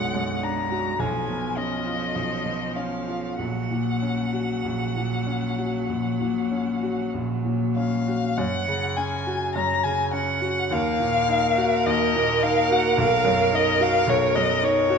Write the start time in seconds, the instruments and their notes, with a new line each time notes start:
Already playing: grand piano B1 F#2 D4 F#4, cello G#3, violin F#5
0.14 grand piano F#2
0.43 grand piano D4, violin A#5
0.71 grand piano F#4
0.99 grand piano B1, cello F3, violin G#5
1.28 grand piano B2
1.57 grand piano C#4, violin D#5
1.86 grand piano F4
2.15 grand piano B1
2.45 grand piano B2
2.76 grand piano C#4, violin F5
3.08 grand piano F4
3.38 grand piano A#1, cello F#3, violin F#5
3.71 grand piano A#2
4.02 grand piano C#4
4.33 grand piano F#4
4.64 grand piano A#1
4.96 grand piano A#2
5.26 grand piano C#4
5.58 grand piano F#4
5.89 grand piano A#1
6.21 grand piano A#2
6.51 grand piano C#4
6.83 grand piano F#4
7.14 grand piano A#1
7.45 grand piano A#2
7.76 grand piano C#4, violin F5
8.08 grand piano F#4
8.37 grand piano F#2, violin F#5
8.68 grand piano C#3
8.97 grand piano C#4, violin G#5
9.27 grand piano F#4
9.54 grand piano F#2, violin A#5
9.84 grand piano C#3, violin G#5
10.13 grand piano C#4, violin F#5
10.42 grand piano F#4
10.71 grand piano D#2, cello A#4, violin F5
11.00 grand piano A#2
11.28 grand piano D#4
11.57 grand piano F#4
11.86 grand piano D#2, violin D#5
12.14 grand piano A#2
12.43 grand piano D#4, violin F5
12.71 grand piano F#4, violin F#5
12.98 grand piano B1, violin F5
13.25 grand piano F#2
13.52 grand piano D#4, violin D#5
13.80 grand piano F#4, violin F5
14.07 grand piano B1, violin C#5
14.35 grand piano F#2, violin D#5
14.62 grand piano D#4, violin C#5
14.90 grand piano F#4